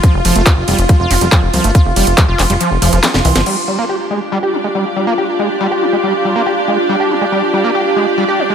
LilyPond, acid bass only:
\new Staff \with { instrumentName = "Acid bass" } { \clef bass \time 4/4 \key f \dorian \tempo 4 = 140 f16 r16 f16 a16 f'16 r16 g16 r16 f16 f'16 a16 g16 f16 r16 f16 a16 | f'16 r16 g16 r16 f16 f'16 a16 g16 f16 r16 f16 f16 f16 r16 e16 f16 | g16 r16 g16 bes16 g'16 r16 aes16 r16 g16 g'16 bes16 aes16 g16 r16 g16 bes16 | g'16 r16 aes16 r16 g16 g'16 bes16 aes16 g16 r16 g16 bes16 g'16 r16 aes16 r16 |
g16 g'16 bes16 aes16 g16 r16 g16 bes16 g'16 r16 aes16 r16 g16 g'16 bes16 aes16 | }